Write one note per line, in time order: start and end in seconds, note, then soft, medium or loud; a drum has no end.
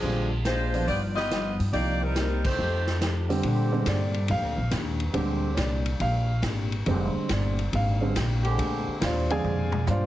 0.00 0.84 A#1 medium
0.00 0.33 A#2 soft
0.00 0.28 D3 medium
0.00 0.32 F3 medium
0.00 0.29 G3 soft
0.00 0.33 G#3 soft
0.00 0.32 C4 medium
0.00 0.28 C4 soft
0.00 0.32 D4 medium
0.00 0.29 F4 medium
0.00 0.32 G#4 medium
0.04 0.33 D4 medium
0.04 0.34 G4 medium
0.45 0.75 A#2 medium
0.45 0.75 G#3 medium
0.45 0.85 G#3 medium
0.45 0.85 D4 medium
0.45 0.76 D4 medium
0.45 0.85 F4 medium
0.45 0.76 G4 medium
0.45 0.85 C5 medium
0.45 snare medium
0.45 closed hi-hat medium
0.74 0.87 F3 medium
0.74 0.87 B3 medium
0.74 0.87 D4 medium
0.74 0.87 F4 medium
0.74 open hi-hat soft
0.87 1.55 G1 medium
0.87 1.18 G2 soft
0.87 1.18 F3 soft
0.87 1.01 B3 medium
0.87 1.19 B3 medium
0.87 1.19 D#4 medium
0.87 1.01 F4 medium
0.87 1.01 G4 medium
0.87 1.01 D5 loud
0.87 open hi-hat soft
1.15 1.56 B3 medium
1.15 1.56 F4 medium
1.15 1.56 G4 medium
1.15 1.56 D#5 medium
1.15 snare soft
1.31 1.61 G2 medium
1.31 1.61 F3 medium
1.31 1.61 B3 medium
1.31 1.61 D#4 medium
1.31 snare medium
1.31 closed hi-hat medium
1.59 1.72 G2 medium
1.59 open hi-hat soft
1.73 2.54 C2 medium
1.73 2.03 C3 soft
1.73 1.99 F3 medium
1.73 2.04 G3 soft
1.73 2.00 A#3 medium
1.73 1.99 A#3 soft
1.73 2.04 A#3 soft
1.73 2.00 D#4 medium
1.73 1.99 D#4 soft
1.73 2.04 D#4 soft
1.73 2.00 G4 medium
1.73 1.99 G4 medium
1.73 2.00 D5 loud
1.73 open hi-hat soft
2.02 2.44 G3 medium
2.02 2.45 C4 medium
2.02 2.44 D#4 medium
2.02 2.45 A#4 medium
2.16 2.46 C3 medium
2.16 2.46 G3 medium
2.16 2.46 A#3 medium
2.16 2.47 D#4 medium
2.16 snare medium
2.16 closed hi-hat medium
2.45 2.98 A3 medium
2.45 2.98 D#4 medium
2.45 2.98 G4 medium
2.45 2.98 C5 medium
2.45 kick medium
2.45 crash medium
2.58 3.40 F2 medium
2.58 2.88 F3 soft
2.58 2.89 A3 medium
2.58 2.89 D#4 soft
2.58 2.89 G4 medium
2.87 snare soft
3.01 3.31 F3 medium
3.01 3.31 A3 medium
3.01 3.31 D#4 medium
3.01 3.32 G4 medium
3.01 snare medium
3.01 closed hi-hat medium
3.29 3.70 D3 medium
3.29 3.71 G3 medium
3.29 3.71 C4 medium
3.29 3.84 G4 medium
3.29 open hi-hat soft
3.43 3.73 A#2 medium
3.43 3.85 A#2 medium
3.43 4.64 D3 medium
3.43 3.74 G#3 medium
3.43 4.64 C4 medium
3.43 3.74 D4 medium
3.43 4.64 G4 loud
3.43 3.75 G4 medium
3.43 ride medium
3.72 3.96 D3 medium
3.72 3.97 G3 soft
3.72 3.97 G#3 soft
3.72 3.97 C4 medium
3.86 4.28 G2 medium
3.86 4.16 A#2 medium
3.86 4.17 G#3 medium
3.86 4.17 D4 medium
3.86 4.17 G4 medium
3.86 4.27 D5 medium
3.86 snare medium
3.86 hi-hat pedal medium
3.86 ride medium
4.14 ride soft
4.28 4.43 F2 medium
4.28 4.59 A#2 soft
4.28 4.59 G#3 soft
4.28 4.60 D4 medium
4.28 4.60 G4 medium
4.28 4.70 F5 medium
4.28 ride medium
4.43 4.57 D2 medium
4.57 4.71 A#1 medium
4.71 5.13 D#2 medium
4.71 5.02 A#2 medium
4.71 5.02 G#3 medium
4.71 5.03 D4 medium
4.71 5.03 G4 medium
4.71 snare medium
4.71 hi-hat pedal medium
4.71 ride medium
5.00 ride soft
5.13 5.56 D2 medium
5.13 5.45 A#2 medium
5.13 5.47 D3 soft
5.13 5.80 D3 medium
5.13 5.47 G3 soft
5.13 5.47 G#3 soft
5.13 5.45 G#3 soft
5.13 5.47 C4 medium
5.13 5.81 C4 medium
5.13 5.45 D4 medium
5.13 5.80 G4 loud
5.13 5.46 G4 medium
5.13 ride medium
5.54 5.99 C2 medium
5.54 5.88 A#2 medium
5.54 5.88 G#3 medium
5.54 5.58 C#5 soft
5.54 snare medium
5.54 hi-hat pedal medium
5.54 ride medium
5.58 5.88 D4 medium
5.58 5.88 G4 medium
5.58 5.98 D5 medium
5.86 ride medium
6.00 6.42 A#1 medium
6.00 6.31 A#2 soft
6.00 6.31 G#3 soft
6.00 6.31 D4 soft
6.00 6.32 G4 medium
6.00 6.41 F5 medium
6.00 ride medium
6.42 6.84 G#1 medium
6.42 6.73 A#2 medium
6.42 6.74 G#3 medium
6.42 6.74 D4 medium
6.42 6.74 G4 medium
6.42 snare medium
6.42 hi-hat pedal soft
6.42 ride medium
6.72 ride soft
6.86 7.13 F1 medium
6.86 7.16 A#2 medium
6.86 7.54 D3 soft
6.86 7.06 D3 medium
6.86 7.55 G3 soft
6.86 7.06 G#3 medium
6.86 7.17 G#3 medium
6.86 7.55 G#3 soft
6.86 7.06 C4 medium
6.86 7.55 C4 medium
6.86 7.17 D4 medium
6.86 7.06 G4 loud
6.86 7.18 G4 medium
6.86 ride medium
7.15 muted upright bass stroke soft
7.29 7.71 G1 medium
7.29 7.60 A#2 medium
7.29 7.60 G#3 medium
7.29 7.60 D4 medium
7.29 7.61 G4 medium
7.29 7.71 D5 soft
7.29 snare medium
7.29 hi-hat pedal medium
7.29 ride medium
7.59 ride soft
7.72 8.14 G#1 medium
7.72 8.02 A#2 soft
7.72 8.03 G#3 soft
7.72 8.03 D4 medium
7.72 8.03 G4 medium
7.72 8.14 F5 medium
7.72 ride medium
8.01 8.14 D3 soft
8.01 8.14 G3 soft
8.01 8.14 G#3 soft
8.01 8.14 C4 soft
8.15 8.57 A#1 medium
8.15 8.45 A#2 medium
8.15 8.46 G#3 medium
8.15 8.46 D4 medium
8.15 8.46 G4 medium
8.15 snare medium
8.15 hi-hat pedal medium
8.15 ride medium
8.43 8.98 D3 loud
8.43 8.98 G#3 medium
8.43 8.98 C4 medium
8.43 8.98 G4 loud
8.43 ride soft
8.58 8.85 D2 medium
8.58 8.88 A#2 medium
8.58 8.89 G#3 medium
8.58 8.89 D4 medium
8.58 8.89 G4 medium
8.58 ride medium
8.87 muted upright bass stroke soft
9.00 9.43 D#2 medium
9.00 9.31 A#2 medium
9.00 9.31 G#3 medium
9.00 9.31 D4 medium
9.00 9.32 G4 medium
9.00 9.30 F5 medium
9.00 snare medium
9.00 hi-hat pedal medium
9.00 ride medium
9.05 9.31 F4 medium
9.05 9.31 C5 medium
9.05 9.30 D5 medium
9.30 9.54 D3 medium
9.30 9.54 F3 soft
9.30 9.55 G#3 soft
9.30 9.55 C4 medium
9.30 9.84 G#4 medium
9.30 9.84 D5 medium
9.30 9.84 F5 medium
9.30 9.84 G#5 loud
9.30 ride medium
9.44 9.86 F2 medium
9.44 9.74 A#2 soft
9.44 9.74 G#3 medium
9.44 9.75 D4 medium
9.44 9.75 G4 medium
9.44 mid tom medium
9.72 mid tom medium
9.86 10.06 G2 medium
9.86 10.06 A#2 medium
9.86 10.06 G#3 medium
9.86 10.06 D4 medium
9.86 10.06 F4 medium
9.86 10.06 G4 medium
9.86 10.06 C5 medium
9.86 10.06 D5 medium
9.86 10.06 F5 medium
9.86 hi-hat pedal medium
9.86 mid tom medium